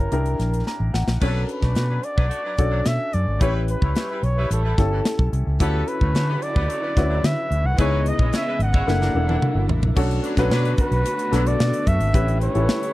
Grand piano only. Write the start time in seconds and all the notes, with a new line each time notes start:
Already playing: C#4 E4 G4 B4 C#5
0.12 D4 E4 G4 A#4
0.67 A#5
0.94 F#5
1.21 C#4 D4 F#4 A4
2.58 C#4 D4 F#4 A4
3.41 C#4 E4 G4 B4
4.78 C#4 E4 G4 A4
5.60 C#4 E4 F#4 A4
6.96 C#4 E4 F#4 B4
7.78 B3 D#4 E4 G#4
8.87 A#3 D4 E4 A4
9.14 A#3 D4 E4 A4
9.96 C#4 D4 F#4 A4
10.38 C#4 D4 F#4 B4
11.32 B3 D4 F#4 A4
12.14 C#4 E4 G4 B4
12.54 C#4 E4 G4 A4
12.62 B4